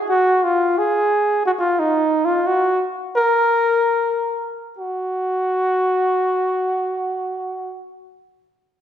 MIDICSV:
0, 0, Header, 1, 2, 480
1, 0, Start_track
1, 0, Tempo, 500000
1, 8458, End_track
2, 0, Start_track
2, 0, Title_t, "Flugelhorn"
2, 0, Program_c, 0, 56
2, 88, Note_on_c, 0, 66, 92
2, 419, Note_on_c, 0, 65, 83
2, 433, Note_off_c, 0, 66, 0
2, 753, Note_on_c, 0, 68, 90
2, 767, Note_off_c, 0, 65, 0
2, 1384, Note_off_c, 0, 68, 0
2, 1400, Note_on_c, 0, 66, 90
2, 1447, Note_off_c, 0, 66, 0
2, 1526, Note_on_c, 0, 65, 85
2, 1722, Note_on_c, 0, 63, 92
2, 1736, Note_off_c, 0, 65, 0
2, 2162, Note_on_c, 0, 65, 87
2, 2176, Note_off_c, 0, 63, 0
2, 2371, Note_on_c, 0, 66, 94
2, 2385, Note_off_c, 0, 65, 0
2, 2739, Note_off_c, 0, 66, 0
2, 3028, Note_on_c, 0, 70, 102
2, 4410, Note_off_c, 0, 70, 0
2, 4594, Note_on_c, 0, 66, 84
2, 7446, Note_off_c, 0, 66, 0
2, 8458, End_track
0, 0, End_of_file